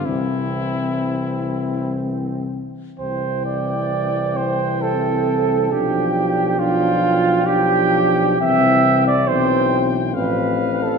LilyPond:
<<
  \new Staff \with { instrumentName = "Cornet" } { \time 3/4 \key c \major \tempo 4 = 66 e'2 r4 | g''2. | g''4 g''4 g''4 | g''4 g''4 f''4 | }
  \new Staff \with { instrumentName = "Flugelhorn" } { \time 3/4 \key c \major c'2~ c'8 r8 | c''8 d''4 c''8 a'4 | g'4 f'4 g'4 | e''8. d''16 c''8. r16 b'8. a'16 | }
  \new Staff \with { instrumentName = "Euphonium" } { \time 3/4 \key c \major c'2~ c'8 r8 | c'2. | d'4 d'4 d'4 | c'4 c'4 c'4 | }
  \new Staff \with { instrumentName = "Trombone" } { \clef bass \time 3/4 \key c \major e2~ e8 r8 | e2. | f4 f4 f4 | e4 e4 f8 e8 | }
  \new Staff \with { instrumentName = "Tuba" } { \clef bass \time 3/4 \key c \major c,2~ c,8 r8 | c,2. | b,,2. | c,4 b,,4 a,,4 | }
>>